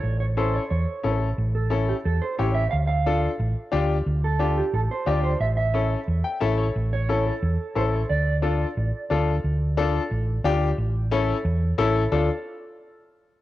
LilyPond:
<<
  \new Staff \with { instrumentName = "Clean electric guitar" } { \time 4/4 \key d \minor \tempo 4 = 179 cis''8 cis''8 c''8 cis''8 cis''4. r8 | r8 a'4 g'8 a'8 c''8 cis''8 e''8 | f''8 f''4 r2 r8 | r8 a'4 g'8 a'8 c''8 d''8 c''8 |
e''8 e''4 r2 r8 | r8 cis''4 a'4. c''8 cis''8 | d''2. r4 | r1 |
r1 | r1 | }
  \new Staff \with { instrumentName = "Upright piano" } { \time 4/4 \key d \minor r4 <cis' e' a'>8 r4. <cis' e' a'>8 r8 | r4 <cis' e' a'>8 r4. <cis' e' g'>8 r8 | r4 <d' f' a'>8 r4. <d' f' g'>8 r8 | r4 <d' f' g'>8 r4. <d' f' g'>8 r8 |
r4 <cis' e' a'>8 r4 g''8 <cis' e' a' e''>8 cis''8 | r4 <cis' e' a'>8 r4. <cis' e' a'>8 r8 | r4 <d' f' a'>8 r4. <d' f' a'>8 r8 | r4 <d' f' a'>8 r4. <d' f' g'>8 r8 |
r4 <cis' e' a'>8 r4. <cis' e' a'>8 r8 | <d' f' a'>8 r2. r8 | }
  \new Staff \with { instrumentName = "Fingered electric bass" } { \clef bass \time 4/4 \key d \minor a,,2 e,8 r8 a,,4 | a,,2 e,8 r8 a,,4 | d,2 a,,8 r8 d,4 | d,2 a,,8 r8 d,4 |
a,,2 e,8 r8 a,,4 | a,,2 e,8 r8 a,,4 | d,2 a,,8 r8 d,4 | d,2 a,,4 d,4 |
a,,2 e,4 a,,4 | d,8 r2. r8 | }
>>